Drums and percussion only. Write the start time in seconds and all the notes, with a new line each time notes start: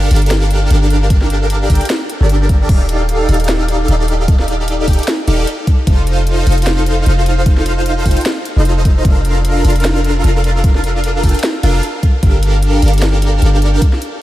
0.11 open hi-hat
0.16 closed hi-hat
0.22 closed hi-hat
0.26 closed hi-hat
0.31 snare, closed hi-hat
0.51 closed hi-hat
0.70 closed hi-hat
0.90 closed hi-hat
1.10 kick, closed hi-hat
1.21 snare
1.30 closed hi-hat
1.50 closed hi-hat
1.70 kick, open hi-hat
1.75 closed hi-hat
1.81 closed hi-hat
1.85 closed hi-hat
1.90 snare, closed hi-hat
2.10 closed hi-hat
2.29 closed hi-hat
2.49 kick, closed hi-hat
2.69 kick, closed hi-hat, crash
2.89 closed hi-hat
3.09 closed hi-hat
3.29 open hi-hat
3.34 closed hi-hat
3.40 closed hi-hat
3.44 closed hi-hat
3.49 snare, closed hi-hat
3.68 closed hi-hat
3.88 closed hi-hat
4.08 closed hi-hat
4.28 kick, closed hi-hat
4.39 snare
4.48 closed hi-hat
4.68 closed hi-hat
4.88 kick, open hi-hat
4.93 closed hi-hat
4.99 closed hi-hat
5.03 closed hi-hat
5.08 snare, closed hi-hat
5.28 closed hi-hat
5.47 closed hi-hat
5.67 kick, closed hi-hat
5.87 kick, closed hi-hat
6.07 closed hi-hat
6.27 closed hi-hat
6.47 open hi-hat
6.52 closed hi-hat
6.58 closed hi-hat
6.62 closed hi-hat
6.67 snare, closed hi-hat
6.86 closed hi-hat
7.06 closed hi-hat
7.26 closed hi-hat
7.46 kick, closed hi-hat
7.57 snare
7.66 closed hi-hat
7.86 closed hi-hat
8.06 kick, open hi-hat
8.11 closed hi-hat
8.17 closed hi-hat
8.21 closed hi-hat
8.26 snare, closed hi-hat
8.45 closed hi-hat
8.65 closed hi-hat
8.85 kick, closed hi-hat
9.05 kick, closed hi-hat
9.25 closed hi-hat
9.45 closed hi-hat
9.65 open hi-hat
9.70 closed hi-hat
9.76 closed hi-hat
9.80 closed hi-hat
9.85 snare, closed hi-hat
10.04 closed hi-hat
10.24 closed hi-hat
10.44 closed hi-hat
10.64 kick, closed hi-hat
10.75 snare
10.84 closed hi-hat
11.04 closed hi-hat
11.23 kick, open hi-hat
11.29 closed hi-hat
11.35 closed hi-hat
11.39 closed hi-hat
11.43 snare, closed hi-hat
11.63 closed hi-hat
11.83 closed hi-hat
12.03 kick, closed hi-hat
12.23 kick, closed hi-hat
12.43 closed hi-hat
12.63 closed hi-hat
12.82 open hi-hat
12.88 closed hi-hat
12.93 closed hi-hat
12.98 closed hi-hat
13.02 snare, closed hi-hat
13.22 closed hi-hat
13.42 closed hi-hat
13.62 closed hi-hat
13.82 kick, closed hi-hat
13.93 snare
14.02 closed hi-hat